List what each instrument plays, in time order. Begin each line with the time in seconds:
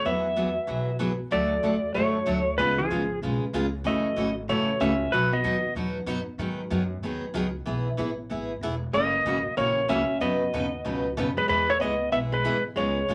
0.05 upright bass E2, steel-string acoustic guitar E3 F#3 B3 F#4 G#4, electric slide guitar E5
0.36 steel-string acoustic guitar E3 F#3 B3 F#4 G#4
0.67 upright bass B1, steel-string acoustic guitar E3 F#3 B3 F#4 G#4
0.99 steel-string acoustic guitar E3 F#3 B3 F#4 G#4
1.31 upright bass D2, steel-string acoustic guitar D3 F#3 A3 D4 F#4, electric slide guitar D5
1.63 upright bass E2, steel-string acoustic guitar D3 F#3 A3 D4 F#4
1.95 upright bass F#2, steel-string acoustic guitar D3 F#3 A3 D4 F#4, electric slide guitar C#5
2.26 upright bass D2, steel-string acoustic guitar D3 F#3 A3 D4 F#4
2.58 upright bass C#2, steel-string acoustic guitar C#3 G#3 B3 F4 G#4, electric slide guitar B4
2.78 hollow-body jazz guitar F3, electric slide guitar G#4
2.90 upright bass G#1, steel-string acoustic guitar C#3 G#3 B3 F4 G#4
3.22 upright bass B1, steel-string acoustic guitar C#3 G#3 B3 F4 G#4
3.53 upright bass C#2, steel-string acoustic guitar C#3 G#3 B3 F4 G#4
3.84 upright bass F#1, steel-string acoustic guitar C#3 E3 A3 C#4 F#4, electric slide guitar D#5
4.16 upright bass G#1, steel-string acoustic guitar C#3 E3 A3 C#4 F#4
4.48 upright bass A1, steel-string acoustic guitar C#3 E3 A3 C#4 F#4, electric slide guitar C#5
4.80 upright bass C#2, steel-string acoustic guitar C#3 E3 A3 C#4 F#4, electric slide guitar E5
5.12 upright bass B1, steel-string acoustic guitar B2 F#3 B3 D#4 F#4, electric slide guitar B4
5.33 hollow-body jazz guitar B3, electric slide guitar D#5
5.43 upright bass D#2, steel-string acoustic guitar B2 F#3 B3 D#4 F#4
5.75 upright bass E2, steel-string acoustic guitar B2 F#3 B3 D#4 F#4
6.06 upright bass F#2, steel-string acoustic guitar B2 F#3 B3 D#4 F#4
6.27 muted upright bass stroke
6.38 upright bass G#2, steel-string acoustic guitar D#3 F#3 B3 D#4 G#4
6.70 upright bass F#2, steel-string acoustic guitar D#3 F#3 B3 D#4 G#4
7.03 upright bass D#2, steel-string acoustic guitar D#3 F#3 B3 D#4 G#4
7.23 muted upright bass stroke
7.34 upright bass C#2, steel-string acoustic guitar D#3 F#3 B3 D#4 G#4
7.66 upright bass B1, steel-string acoustic guitar E3 B3 E4 G#4
7.97 upright bass A1, steel-string acoustic guitar E3 B3 E4 G#4
8.30 upright bass G#1, steel-string acoustic guitar E3 B3 E4 G#4
8.61 upright bass E1, steel-string acoustic guitar E3 B3 E4 G#4
8.93 upright bass F#1, steel-string acoustic guitar C#3 E3 A#3 C#4 F#4, electric slide guitar D#5
9.25 upright bass G#1, steel-string acoustic guitar C#3 E3 A#3 C#4 F#4
9.46 muted upright bass stroke
9.57 upright bass A#1, steel-string acoustic guitar C#3 E3 A#3 C#4 F#4, electric slide guitar C#5
9.89 upright bass C#2, steel-string acoustic guitar C#3 E3 A#3 C#4 F#4, electric slide guitar E5
10.21 upright bass F#2, steel-string acoustic guitar B2 C#3 F#3 B3 D#4 B4, electric slide guitar D#5
10.53 upright bass D#2, steel-string acoustic guitar B2 C#3 F#3 B3 D#4 B4
10.85 upright bass C#2, steel-string acoustic guitar B2 C#3 F#3 B3 D#4 B4
11.17 upright bass F#2, steel-string acoustic guitar B2 C#3 F#3 B3 D#4 B4
11.37 hollow-body jazz guitar G#3, electric slide guitar B4
11.49 upright bass E2, steel-string acoustic guitar E3 G#3 B3 E4 G#4, electric slide guitar B4
11.69 hollow-body jazz guitar A3, electric slide guitar C#5
11.81 upright bass C#2, steel-string acoustic guitar E3 G#3 B3 E4 G#4, electric slide guitar D#5
12.12 upright bass B1, steel-string acoustic guitar E3 G#3 B3 E4 G#4, electric slide guitar E5
12.32 hollow-body jazz guitar G#3, electric slide guitar B4
12.44 upright bass G#1, steel-string acoustic guitar E3 G#3 B3 E4 G#4
12.76 upright bass C#2, steel-string acoustic guitar C#3 G#3 B3 F4 G#4, electric slide guitar C#5
13.08 upright bass B1, steel-string acoustic guitar C#3 G#3 B3 F4 G#4